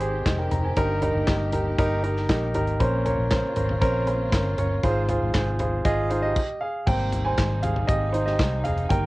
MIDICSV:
0, 0, Header, 1, 5, 480
1, 0, Start_track
1, 0, Key_signature, -4, "major"
1, 0, Tempo, 508302
1, 727, Time_signature, 4, 2, 24, 8
1, 8556, End_track
2, 0, Start_track
2, 0, Title_t, "Grand piano"
2, 0, Program_c, 0, 0
2, 0, Control_c, 0, 64, 127
2, 0, Note_on_c, 0, 44, 59
2, 0, Note_on_c, 0, 67, 105
2, 0, Note_on_c, 0, 68, 97
2, 0, Note_on_c, 0, 72, 113
2, 0, Note_on_c, 0, 75, 81
2, 4, Note_off_c, 0, 72, 0
2, 4, Note_on_c, 0, 72, 90
2, 5, Note_off_c, 0, 67, 0
2, 5, Note_on_c, 0, 67, 76
2, 7, Note_off_c, 0, 68, 0
2, 7, Note_on_c, 0, 68, 77
2, 186, Note_off_c, 0, 67, 0
2, 186, Note_off_c, 0, 72, 0
2, 187, Note_off_c, 0, 68, 0
2, 249, Note_off_c, 0, 75, 0
2, 249, Note_on_c, 0, 75, 55
2, 254, Note_on_c, 0, 67, 46
2, 362, Note_off_c, 0, 75, 0
2, 365, Note_off_c, 0, 67, 0
2, 365, Note_on_c, 0, 79, 59
2, 371, Note_on_c, 0, 70, 52
2, 480, Note_off_c, 0, 79, 0
2, 483, Note_off_c, 0, 70, 0
2, 485, Note_on_c, 0, 82, 64
2, 600, Note_off_c, 0, 82, 0
2, 610, Note_on_c, 0, 80, 54
2, 614, Note_on_c, 0, 72, 43
2, 727, Note_on_c, 0, 67, 81
2, 728, Note_on_c, 0, 43, 64
2, 728, Note_on_c, 0, 63, 92
2, 728, Note_on_c, 0, 70, 112
2, 739, Control_c, 0, 64, 0
2, 745, Note_off_c, 0, 44, 0
2, 836, Note_off_c, 0, 80, 0
2, 839, Note_off_c, 0, 72, 0
2, 896, Control_c, 0, 64, 127
2, 908, Note_off_c, 0, 63, 0
2, 908, Note_off_c, 0, 67, 0
2, 908, Note_off_c, 0, 70, 0
2, 968, Note_on_c, 0, 67, 72
2, 968, Note_on_c, 0, 70, 83
2, 969, Note_on_c, 0, 63, 78
2, 1148, Note_off_c, 0, 63, 0
2, 1148, Note_off_c, 0, 67, 0
2, 1148, Note_off_c, 0, 70, 0
2, 1205, Note_on_c, 0, 63, 78
2, 1205, Note_on_c, 0, 67, 68
2, 1206, Note_on_c, 0, 70, 77
2, 1386, Note_off_c, 0, 63, 0
2, 1386, Note_off_c, 0, 67, 0
2, 1387, Note_off_c, 0, 70, 0
2, 1410, Note_off_c, 0, 43, 0
2, 1445, Note_on_c, 0, 63, 69
2, 1445, Note_on_c, 0, 67, 63
2, 1446, Note_on_c, 0, 70, 72
2, 1626, Note_off_c, 0, 63, 0
2, 1626, Note_off_c, 0, 67, 0
2, 1627, Note_off_c, 0, 70, 0
2, 1686, Note_on_c, 0, 63, 104
2, 1687, Note_on_c, 0, 67, 90
2, 1688, Note_on_c, 0, 70, 117
2, 1867, Note_off_c, 0, 63, 0
2, 1867, Note_off_c, 0, 67, 0
2, 1868, Note_off_c, 0, 70, 0
2, 1923, Note_on_c, 0, 67, 73
2, 1923, Note_on_c, 0, 70, 88
2, 1924, Note_on_c, 0, 63, 80
2, 2105, Note_off_c, 0, 67, 0
2, 2105, Note_off_c, 0, 70, 0
2, 2106, Note_off_c, 0, 63, 0
2, 2166, Note_on_c, 0, 63, 83
2, 2167, Note_on_c, 0, 70, 80
2, 2168, Note_on_c, 0, 67, 71
2, 2347, Note_off_c, 0, 63, 0
2, 2348, Note_off_c, 0, 67, 0
2, 2348, Note_off_c, 0, 70, 0
2, 2406, Note_on_c, 0, 63, 75
2, 2407, Note_on_c, 0, 70, 89
2, 2408, Note_on_c, 0, 67, 71
2, 2587, Note_off_c, 0, 63, 0
2, 2587, Note_off_c, 0, 70, 0
2, 2588, Note_off_c, 0, 67, 0
2, 2642, Note_on_c, 0, 61, 99
2, 2643, Note_on_c, 0, 46, 67
2, 2643, Note_on_c, 0, 70, 82
2, 2644, Note_on_c, 0, 72, 101
2, 2660, Control_c, 0, 64, 0
2, 2812, Control_c, 0, 64, 127
2, 2825, Note_off_c, 0, 61, 0
2, 2826, Note_off_c, 0, 70, 0
2, 2826, Note_off_c, 0, 72, 0
2, 2885, Note_on_c, 0, 61, 83
2, 2885, Note_on_c, 0, 70, 74
2, 2885, Note_on_c, 0, 73, 91
2, 3066, Note_off_c, 0, 61, 0
2, 3067, Note_off_c, 0, 70, 0
2, 3067, Note_off_c, 0, 73, 0
2, 3123, Note_on_c, 0, 61, 78
2, 3123, Note_on_c, 0, 70, 70
2, 3123, Note_on_c, 0, 72, 83
2, 3305, Note_off_c, 0, 61, 0
2, 3305, Note_off_c, 0, 70, 0
2, 3305, Note_off_c, 0, 72, 0
2, 3328, Note_off_c, 0, 46, 0
2, 3365, Note_on_c, 0, 61, 72
2, 3365, Note_on_c, 0, 70, 63
2, 3366, Note_on_c, 0, 72, 82
2, 3547, Note_off_c, 0, 61, 0
2, 3547, Note_off_c, 0, 70, 0
2, 3547, Note_off_c, 0, 72, 0
2, 3601, Note_on_c, 0, 61, 112
2, 3602, Note_on_c, 0, 70, 105
2, 3602, Note_on_c, 0, 72, 120
2, 3784, Note_off_c, 0, 61, 0
2, 3785, Note_off_c, 0, 70, 0
2, 3785, Note_off_c, 0, 72, 0
2, 3845, Note_on_c, 0, 61, 87
2, 3846, Note_on_c, 0, 70, 75
2, 3846, Note_on_c, 0, 72, 91
2, 4027, Note_off_c, 0, 61, 0
2, 4027, Note_off_c, 0, 70, 0
2, 4027, Note_off_c, 0, 72, 0
2, 4084, Note_on_c, 0, 70, 69
2, 4085, Note_on_c, 0, 61, 78
2, 4085, Note_on_c, 0, 72, 87
2, 4266, Note_off_c, 0, 61, 0
2, 4266, Note_off_c, 0, 70, 0
2, 4267, Note_off_c, 0, 72, 0
2, 4325, Note_on_c, 0, 70, 71
2, 4328, Note_on_c, 0, 61, 74
2, 4328, Note_on_c, 0, 73, 89
2, 4507, Note_off_c, 0, 70, 0
2, 4508, Note_off_c, 0, 61, 0
2, 4508, Note_off_c, 0, 73, 0
2, 4566, Note_on_c, 0, 44, 68
2, 4566, Note_on_c, 0, 65, 102
2, 4567, Note_on_c, 0, 68, 82
2, 4567, Note_on_c, 0, 72, 110
2, 4580, Control_c, 0, 64, 0
2, 4747, Note_off_c, 0, 65, 0
2, 4748, Note_off_c, 0, 68, 0
2, 4748, Note_off_c, 0, 72, 0
2, 4771, Control_c, 0, 64, 127
2, 4808, Note_on_c, 0, 65, 80
2, 4808, Note_on_c, 0, 68, 74
2, 4809, Note_on_c, 0, 72, 84
2, 4988, Note_off_c, 0, 65, 0
2, 4988, Note_off_c, 0, 68, 0
2, 4989, Note_off_c, 0, 72, 0
2, 5049, Note_on_c, 0, 65, 83
2, 5049, Note_on_c, 0, 68, 77
2, 5049, Note_on_c, 0, 72, 83
2, 5228, Note_off_c, 0, 65, 0
2, 5228, Note_off_c, 0, 68, 0
2, 5229, Note_off_c, 0, 72, 0
2, 5249, Note_off_c, 0, 44, 0
2, 5287, Note_on_c, 0, 68, 67
2, 5288, Note_on_c, 0, 72, 87
2, 5289, Note_on_c, 0, 65, 76
2, 5468, Note_off_c, 0, 68, 0
2, 5468, Note_off_c, 0, 72, 0
2, 5469, Note_off_c, 0, 65, 0
2, 5524, Note_on_c, 0, 65, 110
2, 5524, Note_on_c, 0, 75, 115
2, 5525, Note_on_c, 0, 68, 99
2, 5706, Note_off_c, 0, 65, 0
2, 5706, Note_off_c, 0, 75, 0
2, 5707, Note_off_c, 0, 68, 0
2, 5759, Note_on_c, 0, 72, 90
2, 5766, Note_on_c, 0, 65, 84
2, 5767, Note_on_c, 0, 68, 77
2, 5772, Note_on_c, 0, 63, 69
2, 5877, Note_on_c, 0, 75, 98
2, 5882, Note_off_c, 0, 63, 0
2, 5890, Note_on_c, 0, 67, 67
2, 5947, Note_off_c, 0, 65, 0
2, 5947, Note_off_c, 0, 68, 0
2, 5947, Note_off_c, 0, 72, 0
2, 6019, Control_c, 0, 64, 0
2, 6217, Note_off_c, 0, 75, 0
2, 6224, Note_off_c, 0, 67, 0
2, 6239, Note_on_c, 0, 77, 89
2, 6254, Note_on_c, 0, 68, 65
2, 6474, Note_off_c, 0, 68, 0
2, 6484, Note_on_c, 0, 48, 49
2, 6484, Note_on_c, 0, 79, 92
2, 6490, Note_on_c, 0, 55, 42
2, 6491, Note_off_c, 0, 77, 0
2, 6496, Note_on_c, 0, 58, 53
2, 6497, Note_on_c, 0, 72, 73
2, 6682, Control_c, 0, 64, 127
2, 6805, Note_off_c, 0, 48, 0
2, 6808, Note_off_c, 0, 55, 0
2, 6811, Note_off_c, 0, 58, 0
2, 6820, Note_off_c, 0, 79, 0
2, 6828, Note_off_c, 0, 72, 0
2, 6844, Note_on_c, 0, 80, 95
2, 6857, Note_on_c, 0, 72, 75
2, 7188, Note_off_c, 0, 72, 0
2, 7202, Note_on_c, 0, 77, 81
2, 7217, Note_off_c, 0, 80, 0
2, 7217, Note_on_c, 0, 68, 67
2, 7256, Note_off_c, 0, 77, 0
2, 7270, Note_off_c, 0, 68, 0
2, 7437, Note_on_c, 0, 75, 103
2, 7451, Note_on_c, 0, 67, 73
2, 7665, Note_off_c, 0, 75, 0
2, 7673, Note_off_c, 0, 67, 0
2, 7675, Note_on_c, 0, 72, 89
2, 7693, Note_on_c, 0, 63, 66
2, 7793, Note_off_c, 0, 72, 0
2, 7798, Note_on_c, 0, 75, 85
2, 7802, Note_off_c, 0, 63, 0
2, 7816, Note_on_c, 0, 67, 69
2, 8147, Note_off_c, 0, 67, 0
2, 8158, Note_on_c, 0, 77, 89
2, 8172, Note_on_c, 0, 68, 73
2, 8174, Note_off_c, 0, 75, 0
2, 8213, Note_off_c, 0, 77, 0
2, 8226, Note_off_c, 0, 68, 0
2, 8398, Note_on_c, 0, 79, 98
2, 8401, Note_on_c, 0, 51, 54
2, 8408, Note_on_c, 0, 55, 45
2, 8413, Note_on_c, 0, 58, 57
2, 8413, Note_on_c, 0, 70, 76
2, 8419, Control_c, 0, 64, 0
2, 8556, Note_off_c, 0, 51, 0
2, 8556, Note_off_c, 0, 55, 0
2, 8556, Note_off_c, 0, 58, 0
2, 8556, Note_off_c, 0, 70, 0
2, 8556, Note_off_c, 0, 79, 0
2, 8556, End_track
3, 0, Start_track
3, 0, Title_t, "String section"
3, 0, Program_c, 1, 48
3, 0, Note_on_c, 1, 51, 65
3, 0, Note_on_c, 1, 56, 57
3, 0, Note_on_c, 1, 60, 55
3, 0, Note_on_c, 1, 67, 72
3, 690, Note_off_c, 1, 56, 0
3, 706, Note_off_c, 1, 60, 0
3, 720, Note_on_c, 1, 58, 59
3, 721, Note_on_c, 1, 55, 55
3, 2608, Note_off_c, 1, 51, 0
3, 2608, Note_off_c, 1, 67, 0
3, 2625, Note_off_c, 1, 55, 0
3, 2651, Note_on_c, 1, 49, 70
3, 2651, Note_on_c, 1, 65, 80
3, 2654, Note_on_c, 1, 60, 67
3, 4526, Note_off_c, 1, 58, 0
3, 4550, Note_off_c, 1, 49, 0
3, 4552, Note_off_c, 1, 60, 0
3, 4569, Note_on_c, 1, 48, 67
3, 4569, Note_on_c, 1, 53, 65
3, 4570, Note_on_c, 1, 56, 61
3, 5976, Note_off_c, 1, 65, 0
3, 5994, Note_off_c, 1, 48, 0
3, 5994, Note_off_c, 1, 53, 0
3, 5995, Note_off_c, 1, 56, 0
3, 6491, Note_on_c, 1, 63, 71
3, 6492, Note_on_c, 1, 51, 65
3, 6492, Note_on_c, 1, 55, 60
3, 6494, Note_on_c, 1, 60, 57
3, 8391, Note_off_c, 1, 51, 0
3, 8391, Note_off_c, 1, 55, 0
3, 8392, Note_off_c, 1, 60, 0
3, 8413, Note_on_c, 1, 55, 61
3, 8414, Note_on_c, 1, 51, 70
3, 8414, Note_on_c, 1, 58, 63
3, 8556, Note_off_c, 1, 51, 0
3, 8556, Note_off_c, 1, 55, 0
3, 8556, Note_off_c, 1, 58, 0
3, 8556, Note_off_c, 1, 63, 0
3, 8556, End_track
4, 0, Start_track
4, 0, Title_t, "Fingered electric bass"
4, 0, Program_c, 2, 33
4, 0, Note_on_c, 2, 32, 85
4, 212, Note_off_c, 2, 32, 0
4, 242, Note_on_c, 2, 29, 77
4, 468, Note_off_c, 2, 29, 0
4, 487, Note_on_c, 2, 29, 80
4, 711, Note_off_c, 2, 29, 0
4, 724, Note_on_c, 2, 31, 82
4, 1060, Note_off_c, 2, 31, 0
4, 1084, Note_on_c, 2, 31, 83
4, 1197, Note_off_c, 2, 31, 0
4, 1207, Note_on_c, 2, 31, 99
4, 1653, Note_off_c, 2, 31, 0
4, 1686, Note_on_c, 2, 31, 94
4, 2133, Note_off_c, 2, 31, 0
4, 2165, Note_on_c, 2, 34, 80
4, 2390, Note_off_c, 2, 34, 0
4, 2411, Note_on_c, 2, 32, 78
4, 2633, Note_off_c, 2, 32, 0
4, 2647, Note_on_c, 2, 34, 93
4, 2982, Note_off_c, 2, 34, 0
4, 3006, Note_on_c, 2, 34, 87
4, 3230, Note_off_c, 2, 34, 0
4, 3366, Note_on_c, 2, 32, 75
4, 3590, Note_off_c, 2, 32, 0
4, 3604, Note_on_c, 2, 34, 93
4, 4052, Note_off_c, 2, 34, 0
4, 4082, Note_on_c, 2, 31, 84
4, 4308, Note_off_c, 2, 31, 0
4, 4325, Note_on_c, 2, 31, 76
4, 4549, Note_off_c, 2, 31, 0
4, 4564, Note_on_c, 2, 32, 97
4, 4901, Note_off_c, 2, 32, 0
4, 4925, Note_on_c, 2, 32, 86
4, 5038, Note_off_c, 2, 32, 0
4, 5047, Note_on_c, 2, 32, 89
4, 5494, Note_off_c, 2, 32, 0
4, 5523, Note_on_c, 2, 32, 92
4, 5972, Note_off_c, 2, 32, 0
4, 6488, Note_on_c, 2, 32, 89
4, 6934, Note_off_c, 2, 32, 0
4, 6969, Note_on_c, 2, 32, 94
4, 7415, Note_off_c, 2, 32, 0
4, 7448, Note_on_c, 2, 32, 85
4, 7894, Note_off_c, 2, 32, 0
4, 7926, Note_on_c, 2, 36, 85
4, 8150, Note_off_c, 2, 36, 0
4, 8165, Note_on_c, 2, 29, 73
4, 8389, Note_off_c, 2, 29, 0
4, 8407, Note_on_c, 2, 31, 99
4, 8556, Note_off_c, 2, 31, 0
4, 8556, End_track
5, 0, Start_track
5, 0, Title_t, "Drums"
5, 5, Note_on_c, 9, 42, 56
5, 99, Note_off_c, 9, 42, 0
5, 243, Note_on_c, 9, 36, 102
5, 245, Note_on_c, 9, 38, 98
5, 248, Note_on_c, 9, 39, 83
5, 250, Note_on_c, 9, 42, 81
5, 338, Note_off_c, 9, 36, 0
5, 340, Note_off_c, 9, 38, 0
5, 343, Note_off_c, 9, 39, 0
5, 344, Note_off_c, 9, 42, 0
5, 484, Note_on_c, 9, 42, 62
5, 488, Note_on_c, 9, 43, 59
5, 579, Note_off_c, 9, 42, 0
5, 582, Note_off_c, 9, 43, 0
5, 723, Note_on_c, 9, 42, 85
5, 726, Note_on_c, 9, 36, 92
5, 818, Note_off_c, 9, 42, 0
5, 820, Note_off_c, 9, 36, 0
5, 962, Note_on_c, 9, 43, 51
5, 963, Note_on_c, 9, 42, 63
5, 1057, Note_off_c, 9, 42, 0
5, 1057, Note_off_c, 9, 43, 0
5, 1199, Note_on_c, 9, 42, 70
5, 1202, Note_on_c, 9, 38, 85
5, 1205, Note_on_c, 9, 39, 69
5, 1208, Note_on_c, 9, 36, 94
5, 1293, Note_off_c, 9, 42, 0
5, 1296, Note_off_c, 9, 38, 0
5, 1299, Note_off_c, 9, 39, 0
5, 1303, Note_off_c, 9, 36, 0
5, 1439, Note_on_c, 9, 42, 75
5, 1446, Note_on_c, 9, 43, 54
5, 1534, Note_off_c, 9, 42, 0
5, 1540, Note_off_c, 9, 43, 0
5, 1686, Note_on_c, 9, 36, 103
5, 1686, Note_on_c, 9, 42, 80
5, 1780, Note_off_c, 9, 36, 0
5, 1780, Note_off_c, 9, 42, 0
5, 1925, Note_on_c, 9, 42, 52
5, 2020, Note_off_c, 9, 42, 0
5, 2047, Note_on_c, 9, 38, 31
5, 2141, Note_off_c, 9, 38, 0
5, 2165, Note_on_c, 9, 36, 97
5, 2168, Note_on_c, 9, 38, 104
5, 2172, Note_on_c, 9, 39, 78
5, 2173, Note_on_c, 9, 42, 83
5, 2259, Note_off_c, 9, 36, 0
5, 2263, Note_off_c, 9, 38, 0
5, 2266, Note_off_c, 9, 39, 0
5, 2267, Note_off_c, 9, 42, 0
5, 2403, Note_on_c, 9, 42, 62
5, 2406, Note_on_c, 9, 43, 56
5, 2497, Note_off_c, 9, 42, 0
5, 2500, Note_off_c, 9, 43, 0
5, 2525, Note_on_c, 9, 42, 40
5, 2620, Note_off_c, 9, 42, 0
5, 2647, Note_on_c, 9, 36, 106
5, 2647, Note_on_c, 9, 42, 89
5, 2741, Note_off_c, 9, 42, 0
5, 2742, Note_off_c, 9, 36, 0
5, 2887, Note_on_c, 9, 43, 53
5, 2888, Note_on_c, 9, 42, 61
5, 2982, Note_off_c, 9, 42, 0
5, 2982, Note_off_c, 9, 43, 0
5, 3122, Note_on_c, 9, 42, 69
5, 3124, Note_on_c, 9, 38, 90
5, 3127, Note_on_c, 9, 39, 71
5, 3129, Note_on_c, 9, 36, 95
5, 3216, Note_off_c, 9, 42, 0
5, 3219, Note_off_c, 9, 38, 0
5, 3222, Note_off_c, 9, 39, 0
5, 3223, Note_off_c, 9, 36, 0
5, 3361, Note_on_c, 9, 42, 67
5, 3368, Note_on_c, 9, 43, 55
5, 3456, Note_off_c, 9, 42, 0
5, 3462, Note_off_c, 9, 43, 0
5, 3486, Note_on_c, 9, 43, 53
5, 3580, Note_off_c, 9, 43, 0
5, 3605, Note_on_c, 9, 36, 109
5, 3605, Note_on_c, 9, 42, 77
5, 3699, Note_off_c, 9, 36, 0
5, 3699, Note_off_c, 9, 42, 0
5, 3844, Note_on_c, 9, 42, 57
5, 3938, Note_off_c, 9, 42, 0
5, 4083, Note_on_c, 9, 36, 110
5, 4086, Note_on_c, 9, 38, 95
5, 4090, Note_on_c, 9, 39, 76
5, 4091, Note_on_c, 9, 42, 85
5, 4177, Note_off_c, 9, 36, 0
5, 4181, Note_off_c, 9, 38, 0
5, 4184, Note_off_c, 9, 39, 0
5, 4185, Note_off_c, 9, 42, 0
5, 4325, Note_on_c, 9, 42, 67
5, 4328, Note_on_c, 9, 43, 53
5, 4419, Note_off_c, 9, 42, 0
5, 4423, Note_off_c, 9, 43, 0
5, 4565, Note_on_c, 9, 42, 88
5, 4566, Note_on_c, 9, 36, 101
5, 4659, Note_off_c, 9, 42, 0
5, 4660, Note_off_c, 9, 36, 0
5, 4804, Note_on_c, 9, 42, 64
5, 4804, Note_on_c, 9, 43, 58
5, 4898, Note_off_c, 9, 43, 0
5, 4899, Note_off_c, 9, 42, 0
5, 5042, Note_on_c, 9, 42, 70
5, 5045, Note_on_c, 9, 38, 90
5, 5048, Note_on_c, 9, 36, 92
5, 5048, Note_on_c, 9, 39, 76
5, 5136, Note_off_c, 9, 42, 0
5, 5139, Note_off_c, 9, 38, 0
5, 5142, Note_off_c, 9, 36, 0
5, 5142, Note_off_c, 9, 39, 0
5, 5280, Note_on_c, 9, 42, 70
5, 5287, Note_on_c, 9, 43, 58
5, 5375, Note_off_c, 9, 42, 0
5, 5381, Note_off_c, 9, 43, 0
5, 5524, Note_on_c, 9, 36, 107
5, 5524, Note_on_c, 9, 42, 80
5, 5619, Note_off_c, 9, 36, 0
5, 5619, Note_off_c, 9, 42, 0
5, 5765, Note_on_c, 9, 42, 60
5, 5860, Note_off_c, 9, 42, 0
5, 6007, Note_on_c, 9, 36, 95
5, 6007, Note_on_c, 9, 49, 85
5, 6101, Note_off_c, 9, 36, 0
5, 6101, Note_off_c, 9, 49, 0
5, 6488, Note_on_c, 9, 36, 105
5, 6488, Note_on_c, 9, 49, 79
5, 6582, Note_off_c, 9, 36, 0
5, 6583, Note_off_c, 9, 49, 0
5, 6727, Note_on_c, 9, 42, 67
5, 6727, Note_on_c, 9, 43, 52
5, 6821, Note_off_c, 9, 43, 0
5, 6822, Note_off_c, 9, 42, 0
5, 6965, Note_on_c, 9, 42, 78
5, 6968, Note_on_c, 9, 38, 85
5, 6970, Note_on_c, 9, 36, 88
5, 6971, Note_on_c, 9, 39, 66
5, 7059, Note_off_c, 9, 42, 0
5, 7062, Note_off_c, 9, 38, 0
5, 7064, Note_off_c, 9, 36, 0
5, 7065, Note_off_c, 9, 39, 0
5, 7205, Note_on_c, 9, 42, 68
5, 7211, Note_on_c, 9, 43, 58
5, 7299, Note_off_c, 9, 42, 0
5, 7306, Note_off_c, 9, 43, 0
5, 7329, Note_on_c, 9, 43, 55
5, 7424, Note_off_c, 9, 43, 0
5, 7447, Note_on_c, 9, 36, 109
5, 7449, Note_on_c, 9, 42, 81
5, 7541, Note_off_c, 9, 36, 0
5, 7543, Note_off_c, 9, 42, 0
5, 7687, Note_on_c, 9, 42, 57
5, 7782, Note_off_c, 9, 42, 0
5, 7808, Note_on_c, 9, 38, 34
5, 7902, Note_off_c, 9, 38, 0
5, 7925, Note_on_c, 9, 36, 109
5, 7930, Note_on_c, 9, 38, 109
5, 7933, Note_on_c, 9, 39, 77
5, 7934, Note_on_c, 9, 42, 84
5, 8019, Note_off_c, 9, 36, 0
5, 8024, Note_off_c, 9, 38, 0
5, 8027, Note_off_c, 9, 39, 0
5, 8028, Note_off_c, 9, 42, 0
5, 8167, Note_on_c, 9, 42, 63
5, 8170, Note_on_c, 9, 43, 60
5, 8261, Note_off_c, 9, 42, 0
5, 8265, Note_off_c, 9, 43, 0
5, 8287, Note_on_c, 9, 42, 44
5, 8382, Note_off_c, 9, 42, 0
5, 8407, Note_on_c, 9, 42, 91
5, 8408, Note_on_c, 9, 36, 104
5, 8501, Note_off_c, 9, 42, 0
5, 8502, Note_off_c, 9, 36, 0
5, 8556, End_track
0, 0, End_of_file